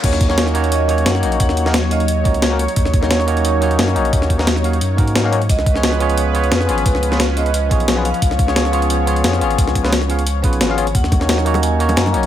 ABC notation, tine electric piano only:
X:1
M:4/4
L:1/16
Q:"Swing 16ths" 1/4=176
K:Ebm
V:1 name="Tine electric piano"
[B,DEGd]3 [B,DEGd]3 [B,DEGd]4 [B,DEGd]4 [B,DEGd]2- | [B,DEGd]3 [B,DEGB] z2 [B,DEGf] z3 [B,DEGd]3 [B,DEGB] z2 | z3 [B,DEGd]3 [B,DEGd]4 [B,DEGd]4 [B,DEGd]2- | [B,DEGd]3 [B,DEGB] z2 [B,DEGf] z3 [B,DEGB]3 [B,DEGf] [B,DEGd] z |
z3 [CDFAd]3 [CDFAd]4 [CDFAd]4 [CDFAd]2- | [CDFAd]3 [CDFAc] z2 [CDFAf] z3 [CDFAd]3 [CDFAc] z2 | z3 [CDFAd]3 [CDFAd]4 [CDFAd]4 [CDFAd]2- | [CDFAd]3 [CDFAc] z2 [CDFAf] z3 [CDFAc]3 [CDFAf] [CDFAd] z |
z3 [B,DEGd]3 [B,DEGd]4 [B,DEGd]4 [B,DEGd]2 |]